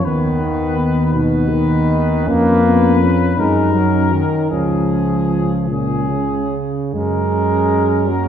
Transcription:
0.04 tuba D#2, trombone D#3, french horn section B3, trombone section B3, trumpet section B4
0.42 trombone section A#3
0.77 trombone section B3
1.12 trombone B2, french horn section B3, trombone section D#4, trumpet section B4
1.51 trombone D#3
2.24 tuba F2, trombone A#3, french horn section C#4, trombone section C#4, trumpet section B4
2.65 trombone section B3
3.00 trombone section C#4
3.37 tuba F#2, trombone G#3, french horn section C#4, trombone section D#4, trumpet section A#4
3.75 trombone F#3
4.12 trombone D#3
4.51 tuba C#2, trombone F3, trombone section C#4, french horn section C#4, trumpet section G#4
5.68 trombone A#2, french horn section C#4, trumpet section G#4
6.08 trombone C#3
6.93 tuba F#2, trombone G#3, french horn section C#4, trumpet section A#4
8.08 trombone F#3, trombone section A#3

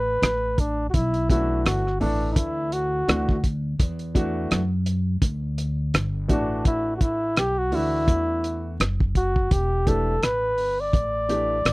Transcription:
Already playing: upright bass A1, flugelhorn B4
0.22 upright bass A1, cross-stick, closed hi-hat
0.58 flugelhorn D4, kick, closed hi-hat
0.90 flugelhorn F#4
0.94 upright bass B1, flugelhorn E4, kick, closed hi-hat
1.14 closed hi-hat
1.29 grand piano E3 A3 C#4 F#4, flugelhorn E4, kick, closed hi-hat
1.36 grand piano D4
1.65 upright bass G1, flugelhorn F#4, cross-stick, closed hi-hat
1.87 cross-stick
2.00 upright bass A1, grand piano E3 A3 D4 A4, flugelhorn D4, open hi-hat
2.32 upright bass D2, flugelhorn D#4, kick, closed hi-hat
2.37 flugelhorn E4
2.72 flugelhorn F#4, closed hi-hat
3.08 upright bass D2, grand piano E3 A3 D4 F#4, cross-stick, closed hi-hat
3.29 kick
3.44 kick, closed hi-hat
3.80 upright bass E2, kick, closed hi-hat
3.99 closed hi-hat
4.15 grand piano E3 A3 D4 F#4, kick, closed hi-hat
4.51 upright bass F#2, cross-stick, closed hi-hat
4.86 closed hi-hat
5.22 upright bass D2, kick, closed hi-hat
5.58 closed hi-hat
5.94 upright bass G1, cross-stick, closed hi-hat
6.28 upright bass A1, grand piano E3 A3 D4 F#4, flugelhorn D4, kick, closed hi-hat
6.65 flugelhorn E4, kick, closed hi-hat
6.97 flugelhorn F#4
7.01 flugelhorn E4, kick, closed hi-hat
7.37 upright bass B1, flugelhorn G4, cross-stick, closed hi-hat
7.58 flugelhorn F#4
7.71 upright bass D2, grand piano E3 A3 D4 F#4, flugelhorn E4, open hi-hat
8.08 upright bass E2, kick, closed hi-hat
8.44 closed hi-hat
8.80 upright bass F#1, cross-stick, closed hi-hat
9.00 kick
9.15 flugelhorn F#4, kick, closed hi-hat
9.36 kick
9.51 upright bass E1, flugelhorn G4, kick, closed hi-hat
9.86 grand piano E3 A3 D4 G4, flugelhorn A4, kick, closed hi-hat
10.23 upright bass A1, flugelhorn B4, cross-stick, closed hi-hat
10.58 upright bass G1, open hi-hat
10.81 flugelhorn D5
10.93 upright bass A1, kick, closed hi-hat
11.29 grand piano E3 A3 D4 G4, closed hi-hat
11.65 upright bass A1, cross-stick, closed hi-hat

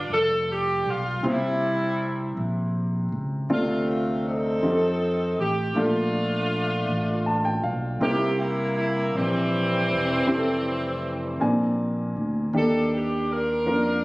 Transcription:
Already playing: upright piano G2 D4 F4 G4 B4, saxophone section F4
0.10 fingered electric bass F1, saxophone section A4
0.52 saxophone section G4
0.86 fingered electric bass B1, saxophone section F4
1.23 fingered electric bass C2, upright piano C3 C4 E4 G4 C5, saxophone section C4
1.27 saxophone section G3 E4
2.37 fingered electric bass A#1
3.12 fingered electric bass C#2
3.50 fingered electric bass D2, upright piano C3 C4 F4 A4 D5, saxophone section A3 C4 F4
3.89 saxophone section F4
4.27 saxophone section C4 D#4 A4
4.62 fingered electric bass F2, upright piano C4 D#4 F4 G4
4.70 upright piano A4
5.39 fingered electric bass A1, saxophone section G4
5.74 fingered electric bass A#1, upright piano A#2 A3 D4 F4 A4, saxophone section F4
5.78 saxophone section A3 D4
6.89 fingered electric bass A1
7.26 upright piano A5
7.45 upright piano G5
7.64 fingered electric bass B1, upright piano F5
8.00 fingered electric bass C2, upright piano C3 C4 D#4 G4 A#4, saxophone section A#3 E4 G4
8.08 upright piano E4
8.40 saxophone section E4
8.78 saxophone section E4
9.15 fingered electric bass A#1, saxophone section E3 G3 C4
9.91 fingered electric bass E1
10.27 fingered electric bass F1, upright piano C4 E4 G4
10.35 upright piano A4
11.40 fingered electric bass A#1, upright piano A#2 A#3 C4 D4 G#5
12.16 fingered electric bass D2
12.53 fingered electric bass D#2, upright piano D#3 A#3 D4 G4
12.57 saxophone section D4 A4
12.96 saxophone section G4
13.32 saxophone section D4 F4 A#4
13.65 fingered electric bass F2, upright piano A#3 C#4 F4 A#4
13.73 upright piano D4

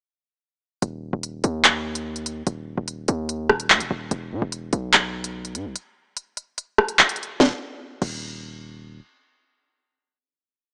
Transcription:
0.82 808-style bass D#1, closed hi-hat
1.13 808-style bass D#1
1.23 closed hi-hat
1.44 808-style bass D#2, closed hi-hat
1.64 clap, closed hi-hat
1.95 closed hi-hat
2.16 closed hi-hat
2.26 closed hi-hat
2.47 808-style bass D#1, closed hi-hat
2.78 808-style bass D#1
2.88 closed hi-hat
3.08 808-style bass D#2, closed hi-hat
3.29 closed hi-hat
3.49 808-style bass D#1, cross-stick
3.60 closed hi-hat
3.70 808-style bass D#2, clap
3.80 808-style bass D#1, closed hi-hat
3.91 808-style bass D#1
4.11 808-style bass E1, closed hi-hat
4.32 808-style bass B2
4.42 808-style bass E1
4.52 closed hi-hat
4.73 808-style bass B1, closed hi-hat
4.93 clap, closed hi-hat
5.24 closed hi-hat
5.45 closed hi-hat
5.55 808-style bass G#2, closed hi-hat
5.65 808-style bass B1
5.76 closed hi-hat
6.17 closed hi-hat
6.37 closed hi-hat
6.58 closed hi-hat
6.78 cross-stick
6.89 closed hi-hat
6.99 clap
7.09 closed hi-hat
7.16 closed hi-hat
7.23 closed hi-hat
7.40 808-style bass D#1, snare
8.02 808-style bass D#1, crash

